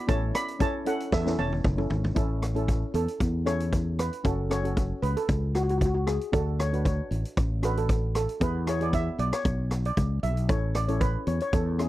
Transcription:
0.07 A1 C#4 E4 A4 C#5 A5, kick, closed hi-hat
0.35 D5 B5, cross-stick, closed hi-hat
0.48 closed hi-hat
0.59 C#4 E4 A4 C#5 A5, kick, closed hi-hat
0.85 C#4 E4 A4 F#5, closed hi-hat
1.00 closed hi-hat
1.12 E2 A4 E5, kick, snare
1.25 C#4 E4 A4, snare
1.38 E1 C#5 A5, high tom
1.52 high tom
1.64 F#1, kick, mid tom
1.77 C#4 E4 A4, mid tom
1.90 G#1, floor tom
2.04 floor tom
2.15 A1 C#4 E4 A4, kick, closed hi-hat
2.42 cross-stick, closed hi-hat
2.55 C#4 E4 A4, closed hi-hat
2.68 kick, closed hi-hat
2.94 E2 A4, closed hi-hat
3.08 closed hi-hat
3.20 E2, kick, closed hi-hat
3.45 C#4 E4 A4 C#5, cross-stick, closed hi-hat
3.60 closed hi-hat
3.73 kick, closed hi-hat
3.99 B4, cross-stick, closed hi-hat
4.13 closed hi-hat
4.24 F#1 C#4 F#4 A4, kick, closed hi-hat
4.50 C#4 F#4 A4 C#5, cross-stick, closed hi-hat
4.64 C#4 F#4 A4, closed hi-hat
4.77 kick, closed hi-hat
5.02 C#2 B4, closed hi-hat
5.17 A4, closed hi-hat
5.29 C#2, kick, closed hi-hat
5.55 F#4, cross-stick, closed hi-hat
5.63 F#4
5.69 F#4, closed hi-hat
5.78 F#4, kick, closed hi-hat
5.85 F#4
5.94 F#4
6.07 G#4, cross-stick, closed hi-hat
6.21 closed hi-hat
6.32 D2 D4 F#4 A4, kick, closed hi-hat
6.60 C#5, cross-stick, closed hi-hat
6.72 D4 F#4 B4, closed hi-hat
6.85 C#5, kick, closed hi-hat
7.11 A1, closed hi-hat
7.25 closed hi-hat
7.37 A1, kick, closed hi-hat
7.63 D4 F#4 A4 B4, cross-stick, closed hi-hat
7.77 A4, closed hi-hat
7.89 kick, closed hi-hat
8.15 A4, cross-stick, closed hi-hat
8.29 closed hi-hat
8.40 E2 B3 E4 G#4 B4, kick, closed hi-hat
8.66 B3 E4 G#4 C#5, cross-stick, closed hi-hat
8.80 B3 E4 G#4 D5, closed hi-hat
8.93 E5, kick, closed hi-hat
9.18 B1 D5, closed hi-hat
9.33 C#5, cross-stick, closed hi-hat
9.45 B1, kick, closed hi-hat
9.71 cross-stick, closed hi-hat
9.85 D5, closed hi-hat
9.97 C#2, kick, closed hi-hat
10.23 B1 E5, closed hi-hat
10.37 closed hi-hat
10.48 A1 C#4 E4 A4 C#5, kick, closed hi-hat
10.75 D5, cross-stick, closed hi-hat
10.88 C#4 E4 A4 C#5, closed hi-hat
11.01 B4, kick, closed hi-hat
11.27 E2 C#5, closed hi-hat
11.40 C#5, closed hi-hat
11.53 E2 A4, kick, closed hi-hat
11.79 C#4 E4 G#4, cross-stick, closed hi-hat

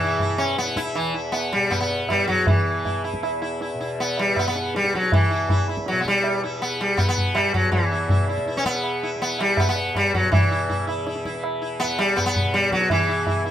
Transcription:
Already playing: E2 B2 E3
0.04 E4
0.19 E4, tabla tin, tabla ge
0.38 C#4, tabla na
0.45 E3
0.57 B3, tabla te
0.67 tabla te
0.76 E4, tabla ke
0.86 tabla te
0.95 E3, tabla na
1.00 E2
1.14 E4
1.32 B3, tabla tin
1.53 B2 G3
1.71 B3, tabla na, tabla ge
1.80 B3
1.90 tabla te
2.09 E3 G3, tabla na, tabla ge
2.28 F#3, tabla ge
2.47 E3, tabla tin, tabla ge
2.65 E3
2.85 E4, tabla tin, tabla ge
3.04 E4, tabla na
3.14 tabla ke
3.20 E2 E4, tabla na
3.42 E4, tabla na
3.61 E4, tabla te
3.74 B2
3.80 E4, tabla te
3.99 B3, tabla tin
4.17 G3, tabla na
4.28 E3
4.36 B3, tabla na, tabla ge
4.48 B3
4.56 tabla te
4.75 G3, tabla te
4.83 E3, tabla te
4.94 F#3, tabla ke
5.03 tabla te
5.12 E3, tabla tin, tabla ge
5.30 E4
5.37 E2
5.49 E4, tabla tin, tabla ge
5.68 E4, tabla na
5.77 tabla ke
5.86 F#3, tabla te
5.92 B2, tabla te
6.01 B3
6.05 G3, tabla ke
6.14 tabla te
6.24 tabla na
6.43 E3 E4
6.60 B3, tabla tin
6.81 G3
6.97 E3 B3, tabla na, tabla ge
7.09 B3
7.18 tabla ge
7.35 G3, tabla na, tabla ge
7.53 E2 F#3, tabla ge
7.72 E3, tabla tin, tabla ge
7.92 E4
8.07 B2 E4, tabla tin, tabla ge
8.28 E4, tabla na
8.38 tabla ke
8.46 E4, tabla te
8.56 C#4, tabla te
8.63 E3 B3, tabla ke
8.75 tabla te
8.83 tabla na
9.03 E4
9.15 E3
9.20 B3, tabla tin
9.39 G3, tabla na
9.57 B3, tabla na, tabla ge
9.69 E2 B3
9.76 tabla te
9.95 G3, tabla na, tabla ge
10.14 F#3, tabla ge
10.22 B2
10.32 E3, tabla tin, tabla ge
10.51 E4
10.69 E4, tabla tin, tabla ge
10.77 E3
10.87 E4, tabla na
11.07 E4, tabla te
11.15 tabla te
11.25 E4, tabla ke
11.30 E3
11.35 tabla te
11.44 tabla na
11.62 E4
11.80 E2 B3, tabla tin
11.99 G3, tabla na
12.17 B3, tabla na, tabla ge
12.26 B3
12.36 B2, tabla ge
12.54 G3, tabla te
12.63 tabla te
12.72 F#3, tabla ke
12.81 tabla te
12.89 E3, tabla tin, tabla ge
13.08 E4
13.27 E4, tabla tin, tabla ge
13.42 E3 E4, tabla na

